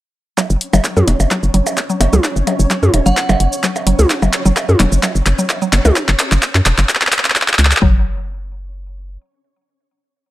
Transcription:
0.38 0.41 F#3 medium
0.38 5.97 C#4 medium
0.38 5.97 C#5 medium
0.38 kick loud
0.38 clap soft
0.38 percussion blips soft
0.38 shaker medium
0.50 0.57 F#1 loud
0.50 shaker soft
0.61 closed hi-hat medium
0.73 0.80 F#1 loud
0.73 0.80 F#3 medium
0.73 percussion blips medium
0.73 shaker soft
0.84 kick loud
0.84 clap soft
0.84 shaker medium
0.97 1.03 F#2 medium
0.97 0.99 F#3 medium
0.97 high tom medium
0.97 shaker soft
1.08 1.15 E1 medium
1.08 closed hi-hat medium
1.08 percussion blips medium
1.20 1.26 F#1 medium
1.20 percussion blips soft
1.20 shaker soft
1.31 1.38 F#3 medium
1.31 kick loud
1.31 clap medium
1.31 shaker medium
1.43 1.50 F#1 loud
1.43 shaker soft
1.54 1.62 F#1 medium
1.54 1.57 F#3 medium
1.54 closed hi-hat medium
1.67 percussion blips soft
1.67 shaker soft
1.77 kick loud
1.77 clap medium
1.77 shaker medium
1.90 1.96 F#3 medium
1.90 shaker soft
2.01 2.08 F#1 medium
2.01 closed hi-hat medium
2.01 percussion blips medium
2.13 2.20 C#2 loud
2.13 2.15 F#3 medium
2.13 high tom medium
2.13 shaker soft
2.24 kick loud
2.24 clap medium
2.24 shaker medium
2.36 2.43 F#1 loud
2.36 shaker soft
2.47 2.54 F#3 medium
2.47 closed hi-hat medium
2.47 percussion blips soft
2.59 2.66 F#1 loud
2.59 shaker soft
2.70 2.73 F#3 medium
2.70 kick loud
2.70 clap medium
2.70 shaker medium
2.83 2.89 F#2 loud
2.83 high tom medium
2.83 shaker soft
2.94 3.01 E1 medium
2.94 closed hi-hat medium
2.94 percussion blips soft
3.06 3.13 F#1 medium
3.06 3.12 F#3 medium
3.06 3.71 F#5 medium
3.06 shaker soft
3.17 kick loud
3.17 clap medium
3.17 shaker medium
3.29 3.36 F#1 loud
3.29 3.32 F#3 medium
3.29 percussion blips medium
3.29 shaker soft
3.40 3.48 F#1 medium
3.40 closed hi-hat medium
3.53 shaker soft
3.63 3.71 F#3 medium
3.63 kick loud
3.63 clap medium
3.63 shaker soft
3.76 percussion blips soft
3.76 shaker soft
3.87 3.94 F#1 medium
3.87 3.89 F#3 medium
3.87 closed hi-hat medium
3.99 4.06 C#2 loud
3.99 high tom medium
3.99 shaker soft
4.10 kick loud
4.10 clap medium
4.10 shaker soft
4.22 4.29 F#1 loud
4.22 4.28 F#3 medium
4.22 percussion blips soft
4.22 shaker soft
4.33 clap medium
4.33 closed hi-hat loud
4.46 4.52 F#1 loud
4.46 4.48 F#3 medium
4.46 shaker soft
4.56 kick loud
4.56 clap medium
4.56 percussion blips medium
4.56 shaker medium
4.69 4.75 F#2 loud
4.69 high tom medium
4.69 shaker soft
4.80 4.87 E1 medium
4.80 4.87 F#3 medium
4.80 clap medium
4.80 closed hi-hat loud
4.80 percussion blips medium
4.92 4.99 F#1 medium
4.92 shaker soft
5.03 5.06 F#3 medium
5.03 kick loud
5.03 clap medium
5.03 percussion blips soft
5.03 shaker medium
5.15 5.22 F#1 loud
5.15 shaker soft
5.26 5.34 F#1 medium
5.26 clap medium
5.26 closed hi-hat loud
5.39 5.45 F#3 medium
5.39 shaker soft
5.49 kick loud
5.49 clap medium
5.49 percussion blips soft
5.49 shaker medium
5.62 5.64 F#3 medium
5.62 shaker soft
5.73 5.80 F#1 medium
5.73 clap medium
5.73 closed hi-hat loud
5.73 percussion blips loud
5.85 5.92 C#2 loud
5.85 high tom medium
5.85 percussion blips medium
5.85 shaker soft
5.96 kick loud
5.96 clap medium
5.96 shaker soft
6.08 6.15 F#1 loud
6.08 clap medium
6.08 shaker soft
6.19 clap loud
6.19 closed hi-hat loud
6.32 6.38 F#1 loud
6.32 clap medium
6.32 shaker soft
6.42 kick loud
6.42 clap loud
6.42 shaker medium
6.55 6.61 F#2 loud
6.55 clap medium
6.55 shaker soft
6.66 6.73 E1 medium
6.66 clap loud
6.66 closed hi-hat medium
6.78 6.85 F#1 medium
6.78 clap medium
6.78 shaker soft
6.89 kick loud
6.89 clap loud
6.89 shaker medium
6.95 clap medium
7.01 clap medium
7.01 shaker soft
7.07 clap medium
7.12 clap loud
7.12 closed hi-hat medium
7.18 clap medium
7.25 clap medium
7.25 shaker soft
7.30 clap medium
7.35 kick loud
7.35 clap loud
7.35 shaker soft
7.42 clap medium
7.48 clap loud
7.48 shaker soft
7.53 clap loud
7.59 7.73 C#2 medium
7.59 clap loud
7.59 closed hi-hat loud
7.65 clap loud
7.71 clap loud
7.71 shaker soft
7.77 clap loud
7.82 9.18 F#1 loud
7.82 8.04 F#3 medium
7.82 kick loud

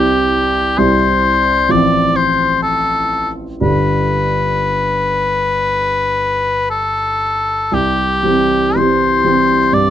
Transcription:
0.00 0.76 C2 soft
0.00 0.76 G3 soft
0.00 0.76 C4 soft
0.00 0.76 E4 soft
0.00 0.80 G4 medium
0.78 1.67 C2 soft
0.78 1.67 G3 soft
0.78 1.67 C4 soft
0.78 1.67 E4 soft
0.78 1.72 C5 medium
1.69 3.58 A1 soft
1.69 3.58 F3 soft
1.69 3.57 C4 soft
1.69 3.58 F4 soft
1.69 2.17 D5 medium
2.16 2.61 C5 medium
2.62 3.30 A4 medium
3.61 7.68 G1 soft
3.61 7.68 D3 soft
3.61 7.68 D4 soft
3.61 7.68 G4 soft
3.61 6.68 B4 medium
6.70 7.75 A4 medium
7.72 8.22 C2 soft
7.72 8.78 G4 medium
8.23 8.72 E3 soft
8.23 8.72 C4 soft
8.23 8.72 G4 soft
8.76 9.20 E3 soft
8.76 9.20 C4 soft
8.76 9.21 G4 soft
8.76 9.75 C5 medium
9.24 9.67 E3 soft
9.24 9.67 C4 soft
9.24 9.67 G4 soft
9.73 9.90 G2 soft
9.73 9.90 D5 medium

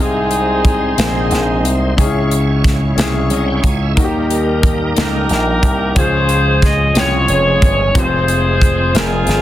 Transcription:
0.00 0.94 C2 medium
0.00 0.94 C3 medium
0.00 1.94 G#3 medium
0.00 0.69 C4 medium
0.00 1.94 C4 medium
0.00 0.95 C4 medium
0.00 0.70 D#4 medium
0.00 1.94 D#4 soft
0.00 0.95 D#4 medium
0.00 0.71 G#4 medium
0.00 1.00 G#4 medium
0.06 1.98 C5 medium
0.31 closed hi-hat soft
0.65 kick medium
0.65 closed hi-hat soft
0.97 1.28 A#1 medium
0.97 1.04 A#3 soft
0.97 1.95 C4 medium
0.97 1.69 D#4 soft
0.97 1.95 D#4 medium
0.97 1.70 G#4 medium
0.97 snare medium
0.97 closed hi-hat medium
1.03 1.72 C4 medium
1.31 1.65 A#1 medium
1.31 snare soft
1.31 closed hi-hat soft
1.65 1.95 C2 medium
1.65 closed hi-hat soft
1.97 2.94 C#2 medium
1.97 2.93 C#3 medium
1.97 3.94 G#3 medium
1.97 2.68 C#4 medium
1.97 3.94 C#4 medium
1.97 2.04 D#4 medium
1.97 2.05 D#4 soft
1.97 2.70 G#4 medium
1.97 3.94 C#5 medium
1.97 kick medium
1.97 closed hi-hat medium
2.05 2.72 E4 medium
2.05 3.97 E4 medium
2.31 closed hi-hat soft
2.64 kick medium
2.64 snare soft
2.64 closed hi-hat medium
2.96 3.28 C2 medium
2.96 3.68 C#4 medium
2.96 3.68 E4 medium
2.96 3.69 G#4 medium
2.96 snare medium
2.96 closed hi-hat medium
3.30 3.61 C2 medium
3.30 3.47 D#5 medium
3.30 closed hi-hat soft
3.48 3.63 G5 medium
3.64 3.94 C#2 medium
3.64 3.81 G#5 medium
3.64 kick medium
3.64 closed hi-hat medium
3.82 4.13 E5 medium
3.95 4.93 D#2 loud
3.95 4.92 D#3 medium
3.95 5.93 G3 medium
3.95 4.67 A#3 medium
3.95 5.93 A#3 medium
3.95 4.68 D#4 medium
3.95 5.93 D#4 medium
3.95 4.04 F#4 medium
3.95 4.04 A4 medium
3.95 kick loud
3.95 closed hi-hat medium
4.04 4.72 G4 medium
4.04 5.96 A#4 medium
4.30 closed hi-hat medium
4.63 kick medium
4.63 closed hi-hat medium
4.95 5.27 C#2 medium
4.95 5.67 A#3 medium
4.95 5.68 D#4 soft
4.95 5.04 A4 soft
4.95 snare loud
4.95 closed hi-hat medium
4.99 5.94 D#4 medium
4.99 5.93 G4 medium
4.99 5.93 A#4 medium
5.04 5.72 A#4 medium
5.29 5.60 A#1 medium
5.29 snare soft
5.29 closed hi-hat soft
5.63 5.93 C2 medium
5.63 kick medium
5.63 closed hi-hat medium
5.95 6.92 C#2 medium
5.95 6.92 C#3 soft
5.95 7.91 F3 medium
5.95 7.91 G#3 soft
5.95 6.67 C#4 medium
5.95 7.91 C#4 soft
5.95 6.67 F4 medium
5.95 6.92 F4 medium
5.95 7.91 G#4 medium
5.95 6.93 G#4 medium
5.95 6.68 G#4 medium
5.95 6.64 C5 loud
5.95 kick loud
5.95 closed hi-hat medium
6.29 closed hi-hat soft
6.62 6.95 D#5 loud
6.62 kick medium
6.62 snare soft
6.62 closed hi-hat medium
6.94 7.26 C2 medium
6.94 7.66 C#4 medium
6.94 7.67 F4 soft
6.94 7.67 G5 medium
6.94 snare medium
6.94 closed hi-hat medium
6.99 7.93 F4 medium
6.99 7.92 G#4 medium
6.99 7.97 C#5 loud
7.28 7.59 F1 medium
7.28 closed hi-hat soft
7.62 7.93 G1 medium
7.62 kick medium
7.62 closed hi-hat medium
7.94 8.90 F1 loud
7.94 9.42 F3 medium
7.94 9.42 G#3 soft
7.94 8.65 C4 medium
7.94 9.42 C4 soft
7.94 8.66 F4 medium
7.94 8.92 F4 medium
7.94 8.02 G4 medium
7.94 9.42 G#4 medium
7.94 8.92 G#4 medium
7.94 kick loud
7.94 closed hi-hat medium
7.98 8.96 C5 loud
8.04 8.70 G#4 medium
8.28 closed hi-hat medium
8.62 kick medium
8.62 closed hi-hat medium
8.94 9.25 F1 medium
8.94 9.42 C4 medium
8.94 9.42 F4 soft
8.94 9.42 F4 medium
8.94 9.42 G#4 medium
8.94 9.42 A#4 medium
8.94 snare medium
8.94 closed hi-hat medium
9.27 9.42 G1 medium
9.27 snare soft
9.27 closed hi-hat soft

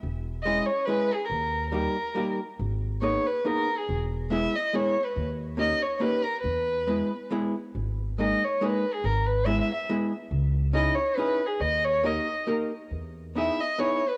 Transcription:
0.03 0.58 E1 medium
0.43 0.68 G#3 medium
0.43 0.68 C#4 soft
0.43 0.68 E4 medium
0.43 0.68 G#4 medium
0.43 0.67 D#5 medium
0.66 0.86 C#5 medium
0.85 1.10 G#3 medium
0.85 1.10 C#4 soft
0.85 1.11 E4 medium
0.85 1.15 B4 medium
0.90 1.11 G#4 medium
1.13 1.26 G#4 medium
1.25 1.69 A#4 medium
1.30 1.86 D#2 medium
1.70 1.95 G3 soft
1.70 1.96 A#3 medium
1.70 1.96 D#4 soft
1.70 2.34 A#4 medium
1.74 1.96 G4 soft
2.15 2.39 G3 soft
2.15 2.39 A#3 medium
2.15 2.40 D#4 soft
2.15 2.40 G4 medium
2.59 3.15 G#1 medium
3.02 3.25 A#3 medium
3.02 3.25 B3 soft
3.02 3.26 D#4 medium
3.02 3.26 G#4 medium
3.02 3.28 C#5 medium
3.26 3.48 B4 medium
3.45 3.68 A#3 medium
3.45 3.68 B3 soft
3.45 3.68 D#4 medium
3.45 3.68 G#4 medium
3.45 3.79 A#4 medium
3.77 3.97 G#4 medium
3.89 4.44 E1 medium
4.30 4.53 G#3 medium
4.30 4.54 B3 medium
4.30 4.54 E4 medium
4.30 4.54 G#4 medium
4.30 4.57 E5 medium
4.55 4.77 D#5 medium
4.73 4.96 G#3 medium
4.73 4.96 B3 medium
4.73 4.96 E4 medium
4.73 4.97 G#4 medium
4.73 5.06 C#5 medium
5.04 5.24 B4 medium
5.16 5.71 D#2 medium
5.57 5.80 A#3 medium
5.57 5.81 C#4 medium
5.57 5.81 D#4 soft
5.57 5.81 G4 medium
5.57 5.83 D#5 medium
5.82 5.96 C#5 medium
5.97 6.23 A#3 medium
5.97 6.23 C#4 soft
5.97 6.25 B4 medium
5.97 6.02 C#5 medium
6.01 6.24 D#4 soft
6.01 6.24 G4 medium
6.23 6.40 A#4 medium
6.41 7.00 E2 medium
6.41 7.25 B4 medium
6.87 7.10 G#3 medium
6.87 7.11 B3 soft
6.87 7.11 E4 soft
6.87 7.11 G#4 soft
7.31 7.54 G#3 medium
7.31 7.54 B3 medium
7.31 7.54 E4 medium
7.31 7.55 G#4 medium
7.75 8.31 G#1 medium
8.18 8.41 G#3 soft
8.18 8.42 A#3 medium
8.18 8.42 D#4 soft
8.18 8.42 G#4 medium
8.18 8.46 D#5 medium
8.44 8.66 C#5 medium
8.61 8.84 G#3 medium
8.61 8.84 A#3 medium
8.61 8.84 D#4 medium
8.61 8.85 G#4 medium
8.61 8.95 B4 medium
8.93 9.07 G#4 medium
9.04 9.59 G#1 medium
9.04 9.28 A#4 medium
9.26 9.47 B4 medium
9.46 9.69 G#3 medium
9.46 9.69 B3 soft
9.46 9.69 E4 soft
9.46 9.70 G#4 medium
9.46 9.60 E5 medium
9.61 9.73 E5 medium
9.74 9.87 E5 medium
9.89 10.12 G#3 medium
9.89 10.12 B3 soft
9.89 10.12 E4 medium
9.89 10.12 G#4 medium
10.31 10.87 C#2 medium
10.73 10.96 C#4 medium
10.73 10.97 D#4 medium
10.73 10.97 E4 medium
10.73 10.98 G#4 medium
10.73 10.96 D#5 medium
10.95 11.18 C#5 medium
11.16 11.40 C#4 medium
11.16 11.40 D#4 soft
11.16 11.41 E4 soft
11.16 11.41 G#4 medium
11.16 11.47 B4 medium
11.46 11.62 G#4 medium
11.60 12.17 D#2 medium
11.60 11.86 D#5 medium
11.84 12.07 C#5 medium
12.03 12.27 A#3 medium
12.03 12.27 D#4 soft
12.03 12.27 G4 medium
12.03 12.28 A#4 medium
12.03 12.49 D#5 medium
12.47 12.71 A#3 medium
12.47 12.71 D#4 soft
12.47 12.71 G4 soft
12.47 12.72 A#4 medium
12.91 13.48 E2 medium
13.35 13.59 B3 soft
13.35 13.59 D#4 soft
13.35 13.60 E4 soft
13.35 13.60 G#4 medium
13.35 13.62 E5 medium
13.60 13.81 D#5 medium
13.78 14.02 B3 medium
13.78 14.02 D#4 medium
13.78 14.03 E4 soft
13.78 14.03 G#4 medium
13.78 14.10 C#5 medium
14.08 14.17 B4 medium

